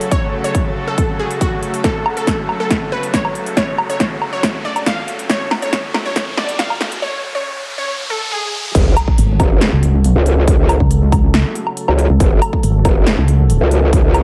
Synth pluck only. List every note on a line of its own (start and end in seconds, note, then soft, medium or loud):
0.12 0.29 C#5 loud
0.44 0.67 C#5 medium
0.87 1.04 A4 medium
1.19 1.31 G#4 medium
1.41 1.64 F#4 medium
1.84 2.01 A4 loud
2.17 2.40 A4 medium
2.60 2.77 A4 loud
2.92 3.04 B4 medium
3.14 3.37 C#5 medium
3.57 3.74 C#5 loud
3.90 4.12 C#5 medium
4.33 4.50 C#5 medium
4.65 4.77 D5 medium
4.86 5.09 F5 medium
5.30 5.47 C#5 loud
5.62 5.85 C#5 medium
6.05 6.22 C#5 loud
6.37 6.49 D5 medium
6.59 6.82 F5 medium
7.02 7.20 C#5 loud
7.35 7.58 C#5 medium
7.78 7.95 C#5 loud
8.10 8.22 A4 medium
8.32 8.55 G#4 medium